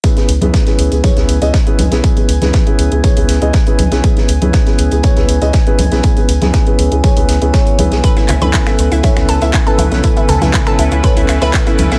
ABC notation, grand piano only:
X:1
M:4/4
L:1/16
Q:1/4=120
K:C#m
V:1 name="Grand piano"
[B,CEGB] [B,CEGB] z [B,CEGB]2 [B,CEGB]2 [B,CEGB] [B,CEGc] [B,CEGB] z [B,CEGd] z [B,CEGB] z [B,CEGB] | [B,CGB] [B,CEGB] z [B,CEGB]2 [B,CEGB]2 [B,CEGB] [B,CEc] [B,CEGB] z [B,CEGd] z [B,CEGB] z [B,CEGB] | [B,CGB] [B,CEGB] z [B,CEGB]2 [B,CEGB]2 [B,CEGB] [B,CEGc] [B,CEGB] z [B,CEGd] z [B,CEGB] z [B,CEGB] | [CG] [B,CEGB] z [B,CEGB]2 [B,CEGB]2 [B,CEGB] [B,CEGc] [B,CEGB] z [B,CEGB] [B,CEGc]2 [B,CEGB] [B,CEGB] |
[B,EA] [B,CEAB] z [B,CEAB]2 [B,CEAB]2 [B,CEAB] [B,CEAc] [B,CEAB] z [B,CEAe] z [B,CEAB] z [B,CEAB] | [B,EA] [B,CEAB] z [B,CEAB]2 [B,CEAB]2 [B,CEAB] [B,CEAc] [B,CEAB] z [B,CEAe] z [B,CEAB] z [B,CEAB] |]